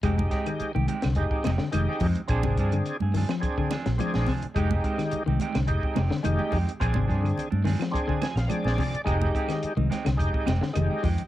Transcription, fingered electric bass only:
\new Staff \with { instrumentName = "Fingered electric bass" } { \clef bass \time 4/4 \key f \dorian \tempo 4 = 106 f,,8 r8. c,16 r16 c,16 f,,16 r16 f,,16 r16 f,,16 r16 f,16 r16 | bes,,16 aes,,16 g,8 r16 g,8 r4 bes,,16 r16 bes,,16 r8 | f,,8 r8. c,16 r16 c,16 f,,16 r16 f,,16 r16 f,,16 r16 f,16 r16 | bes,,16 aes,,16 g,8 r16 g,8 r4 bes,,16 r16 bes,,16 r8 |
f,,8 r8. c,16 r16 c,16 f,,16 r16 f,,16 r16 f,,16 r16 f,16 r16 | }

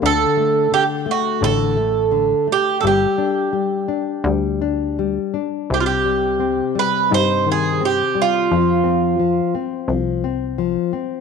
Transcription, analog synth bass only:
\new Staff \with { instrumentName = "Analog synth bass" } { \clef bass \time 4/4 \key d \phrygian \tempo 4 = 86 d,8 r4. a,,2 | g,,8 r4. d,2 | \key c \minor c,2 g,2 | f,2 c,2 | }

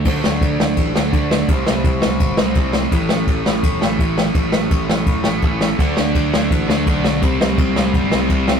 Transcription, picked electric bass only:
\new Staff \with { instrumentName = "Picked electric bass" } { \clef bass \time 4/4 \key d \dorian \tempo 4 = 167 d,8 d,8 d,8 d,8 a,,8 d,8 d,4 | c,8 c,8 c,8 c,8 g,,8 c,8 c,4 | a,,8 a,,8 a,,8 a,,8 e,,8 a,,8 a,,4 | a,,8 a,,8 a,,8 a,,8 e,,8 a,,8 a,,4 |
d,8 d,8 d,8 d,8 a,,8 d,8 b,,4 | c,8 c,8 c,8 c,8 g,,8 c,8 c,4 | }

